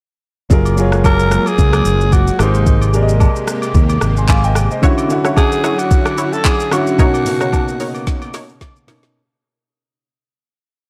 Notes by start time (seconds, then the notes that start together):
0.50 F#1 F#3 G#3 A#3 F4 G#4 A#4, kick, shaker
0.65 high agogo, shaker
0.77 F#3 F4 G#4 C#5, shaker
0.92 cross-stick, shaker
1.04 A#4, kick, high agogo, low woodblock, shaker
1.20 shaker
1.31 cross-stick, shaker
1.46 G#4, high agogo, shaker
1.58 C#2, kick, shaker
1.73 cross-stick, high agogo, shaker
1.85 F#1, shaker
2.01 shaker
2.12 F#4, kick, high agogo, shaker
2.27 shaker
2.39 G#1 C3 G#3 A#3 D#4 G4 A#4 C5, cross-stick, high agogo, shaker
2.54 shaker
2.67 kick, shaker
2.82 high agogo, shaker
2.93 G#3 G4 A#4 D5, shaker
3.02 D#5
3.09 shaker
3.20 kick, high agogo, low woodblock, shaker
3.36 shaker
3.48 cross-stick, shaker
3.62 high agogo, shaker
3.74 D#2, kick, shaker
3.89 high agogo, shaker
4.01 G#1, cross-stick, shaker
4.17 G#5 C6, shaker
4.29 F5 G#5, kick, clap, high agogo, shaker
4.44 D#5 G5, shaker
4.55 cross-stick, high agogo, shaker
4.71 C5 D#5, shaker
4.82 D3 F#3 C#4 E4 F#4 C#5, kick, shaker
4.98 high agogo, shaker
5.09 D3 C#4 E4 F#4, shaker
5.24 E4 F#4 C#5, cross-stick, shaker
5.36 G#4, kick, high agogo, low woodblock, shaker
5.52 shaker
5.64 E4 F#4 C#5, cross-stick, shaker
5.78 F#4, high agogo, shaker
5.91 kick, shaker
6.05 cross-stick, high agogo, shaker
6.18 E4 F#4 C#5, shaker
6.33 A4, shaker
6.45 G#4, kick, clap, high agogo, shaker
6.60 shaker
6.71 D3 C#4 E4 F#4 C#5, cross-stick, high agogo, shaker
6.87 shaker
6.98 B2 C#3 A#3 C#4 D#4 A#4 C#5, kick, shaker
7.14 high agogo, shaker
7.25 B2 A#3 C#4 F#4, open hi-hat, shaker
7.41 D#4 A#4 C#5, cross-stick, shaker
7.53 kick, high agogo, low woodblock, shaker
7.68 shaker
7.80 D#4 A#4 C#5, open hi-hat, shaker
7.95 high agogo, shaker
8.07 kick, snare, shaker
8.22 high agogo, shaker
8.34 D#4 A#4 C#5, snare, open hi-hat, shaker
8.49 shaker
8.61 kick, snare, high agogo, shaker
8.76 shaker
8.87 B2 A#3 C#4 D#4 A#4 C#5, snare, open hi-hat, high agogo, shaker
9.03 snare, shaker